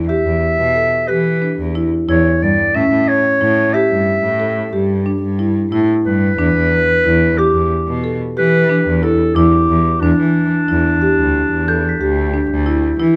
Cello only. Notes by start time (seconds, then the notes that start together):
0.26 E2
0.58 B2
1.09 E3
1.59 E2
2.09 E2
2.42 G2
2.75 A2
2.91 A2
3.41 A2
3.91 G2
4.24 A2
4.73 G2
5.22 G2
5.72 A2
6.05 G2
6.38 E2
6.55 E2
7.05 E2
7.55 E2
7.88 B2
8.37 E3
8.87 E2
9.36 E2
9.69 E2
10.02 E2
10.20 E3
10.69 E2
11.19 D2
11.52 E2
12.02 D2
12.50 D2
13.00 E3